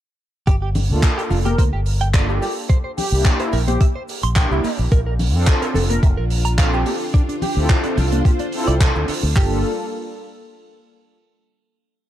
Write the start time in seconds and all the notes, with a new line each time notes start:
0.47 G1 G4, kick, closed hi-hat, cabasa
0.62 G4
0.75 open hi-hat, low conga, cabasa
0.89 D2 A#3 D4 F4 A4, cabasa
1.03 kick, clap, closed hi-hat, cabasa
1.18 G4, closed hi-hat
1.30 F1 F4, open hi-hat, low conga, cabasa
1.45 G4 A#4, closed hi-hat, high conga, cabasa
1.58 D2 C5, kick, closed hi-hat, cabasa
1.73 G1 G4
1.86 open hi-hat, cabasa
2.01 G5, closed hi-hat, cabasa
2.14 A#3 D4 F4 A4 D5, kick, clap, closed hi-hat, cabasa
2.29 D4 G4, cabasa
2.42 G3 G4, open hi-hat, cabasa
2.56 cabasa
2.69 C5, kick, closed hi-hat, cabasa
2.84 C5
2.97 G4, open hi-hat, low conga, cabasa
3.12 C2 A#3 D4 E4 G4, cabasa
3.25 kick, clap
3.40 E4 C5, closed hi-hat
3.53 A#1 A#4, open hi-hat, cabasa
3.68 G4 C5, closed hi-hat, high conga, cabasa
3.81 E5, kick, closed hi-hat, cabasa
3.95 C5
4.08 open hi-hat, cabasa
4.23 A#1 C6, closed hi-hat, cabasa
4.36 A#3 D4 E4 G4 G5, kick, clap, closed hi-hat, cabasa
4.51 C2 E4 G4, cabasa
4.64 A#3, open hi-hat, cabasa
4.79 A#1, cabasa
4.91 A#1 D4 F4 A#4, kick, closed hi-hat, cabasa
5.06 A#4
5.19 open hi-hat, low conga, cabasa
5.34 F2 C4 D4 F4 A4, cabasa
5.47 kick, clap, closed hi-hat, cabasa
5.62 A#4, closed hi-hat
5.74 F1 A4, open hi-hat, low conga, cabasa
5.90 A#4, closed hi-hat, high conga, cabasa
6.02 F1 E5, kick, closed hi-hat, cabasa
6.17 A#1 A#4
6.30 open hi-hat, cabasa
6.45 A#5, closed hi-hat, cabasa
6.58 C4 D4 F4 A4 F5, kick, clap, closed hi-hat, cabasa
6.73 F4 G4, cabasa
6.86 A#3 G4, open hi-hat, cabasa
7.01 cabasa
7.14 D4 C5, kick, closed hi-hat, cabasa
7.29 D4, closed hi-hat
7.42 G4, open hi-hat, low conga, cabasa
7.56 D2 C4 E4 F4 A4, cabasa
7.70 kick, clap, closed hi-hat
7.84 D4, closed hi-hat, cabasa
7.97 C2 C4 F4, open hi-hat, low conga, cabasa
8.12 D4, closed hi-hat, high conga, cabasa
8.25 G4, kick, closed hi-hat, cabasa
8.39 D4, closed hi-hat, cabasa
8.52 C4 E4 F4 A4, open hi-hat, cabasa
8.67 C2 D5, closed hi-hat, cabasa
8.80 A4, kick, clap, closed hi-hat
8.95 D2 A3, cabasa
9.08 D3, muted fingered electric bass stroke, open hi-hat, cabasa
9.23 D2, cabasa
9.35 G1 G3 A#3 D4 F4 G4 A4, kick, clap